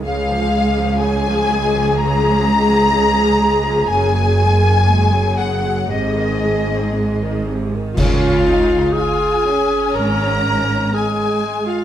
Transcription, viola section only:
\new Staff \with { instrumentName = "Viola section" } { \clef bass \time 4/4 \key des \major \tempo 4 = 61 << { aes'1~ | aes'2 aes'2 | des'8 ees'8 f'8 des'4. aes4 | } \\ { des16 f16 aes16 f16 des16 f16 aes16 f16 des16 f16 aes16 f16 des16 f16 aes16 f16 | des16 ges16 aes16 bes16 aes16 ges16 des16 ges16 c16 ees16 aes16 c'16 aes16 ees16 c16 ees16 | r1 | } >> }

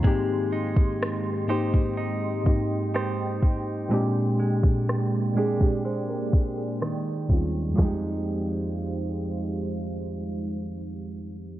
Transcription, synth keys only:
\new Staff \with { instrumentName = "Synth keys" } { \time 4/4 \key f \dorian \tempo 4 = 62 << { r1 | r2 c''16 bes'8 aes'8 r8. | r1 | } \\ { <aes, bes c' ees' g'>4 r8 <aes, bes c' ees' g'>8. r16 <aes, bes c' ees' g'>4 r8 | <bes, aes c' d' g'>4 r8 <bes, aes c' d' aes'>16 <bes, aes c' d' g'>4~ <bes, aes c' d' g'>16 r8 <ees, g c' des' f'>16 r16 | <f, aes c' ees' g'>1 | } >> }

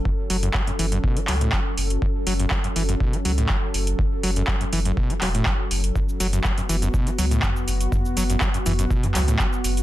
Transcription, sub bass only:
\new Staff \with { instrumentName = "Sub bass" } { \clef bass \time 4/4 \key fis \minor \tempo 4 = 122 r8 fis,,8 r8 fis,,8 r8 cis,8 r8 fis,,8 | r8 fis,,8 r8 fis,,8 r8 cis,8 r8 fis,,8 | r8 fis,,8 r8 fis,,8 r8 e,,8 r8 fis,,8 | r8 fis,,8 r8 fis,,8 r8 cis,8 r8 fis,,8 |
r8 fis,,8 r8 fis,,8 r8 cis,8 r8 fis,,8 | }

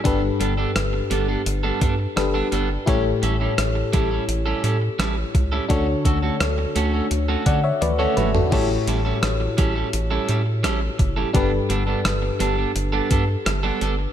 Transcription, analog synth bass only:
\new Staff \with { instrumentName = "Analog synth bass" } { \clef bass \time 4/4 \key a \mixolydian \tempo 4 = 85 g,,8 g,,8 g,,8 g,,8 g,,8 g,8 g,,8 g,,8 | a,,8 a,,8 a,,8 a,,8 a,,8 a,8 a,,8 cis,8 | d,8 d,8 d,8 d,8 d,8 d8 d,8 g,,8 | a,,8 a,,8 a,,8 a,,8 a,,8 a,8 a,,8 fis,,8 |
g,,8 g,,8 g,,8 g,,8 g,,8 g,8 g,,8 g,,8 | }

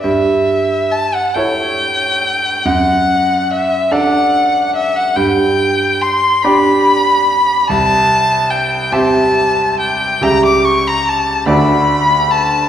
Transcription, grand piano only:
\new Staff \with { instrumentName = "Grand piano" } { \time 6/8 \key g \major \tempo 4. = 47 g,4. <e' a' cis''>4. | fis,4. <d' a' d''>4. | g,4. <d' g' d''>4. | c,4. <c' g' e''>4. |
<cis, g g' e''>4. <d, a fis' d''>4. | }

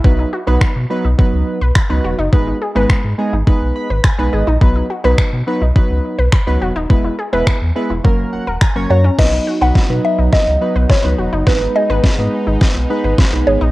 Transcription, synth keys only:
\new Staff \with { instrumentName = "Synth keys" } { \time 4/4 \key b \major \tempo 4 = 105 << { r1 | r2 r8 b''8 gis''8 dis''8 | r1 | r2 r8 fis''8 gis''8 ais''8 |
r1 | r1 | } \\ { <fis b dis' b'>8 r16 <fis b dis' b'>8 r16 <fis b dis' b'>16 r16 <fis b dis' b'>8. r8 <fis b dis' b'>8 r16 | <gis b dis' b'>8 r16 <gis b dis' b'>8 r16 <gis b dis' gis'>16 r16 <gis b dis' b'>8. r8 <gis b dis' b'>8 r16 | <fis b dis' b'>8 r16 <fis b dis' b'>8 r16 <fis b dis' b'>16 r16 <fis b dis' b'>8. r8 <fis b dis' b'>8 r16 | <gis b e' b'>8 r16 <gis b e' b'>8 r16 <gis b e' b'>16 r16 <fis ais cis' ais'>8. r8 <fis ais cis' cis''>8 r16 |
<fis b dis' b'>8 r16 <fis b dis' b'>16 r16 <fis b dis' b'>8. r8 <fis b dis' b'>8 r16 <fis b dis' b'>8 r16 | <gis b dis' b'>8 r16 <gis b dis' b'>16 r16 <gis b dis' b'>8. r8 <gis b dis' b'>8 r16 <gis b dis' b'>8 r16 | } >> }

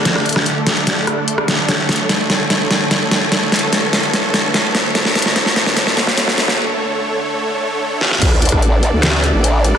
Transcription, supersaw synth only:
\new Staff \with { instrumentName = "Supersaw synth" } { \time 4/4 \key c \mixolydian \tempo 4 = 147 << { d''1 | cis''1~ | cis''1~ | cis''1~ |
cis''1 | d''1 | } \\ { <d a a'>1~ | <d a a'>1~ | <d a a'>1~ | <d a a'>1~ |
<d a a'>1 | <d' a'>1 | } >> }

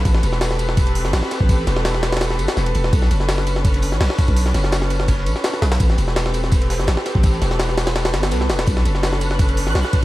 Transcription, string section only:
\new Staff \with { instrumentName = "String section" } { \time 4/4 \key a \dorian \tempo 4 = 167 << { <a' b'>1~ | <a' b'>1~ | <a' b'>1~ | <a' b'>1 |
<a' b'>1~ | <a' b'>1~ | <a' b'>1 | } \\ { <c' g'>1~ | <c' g'>1 | <cis' d'>1~ | <cis' d'>1 |
<c' g'>1~ | <c' g'>1 | <cis' d'>1 | } >> }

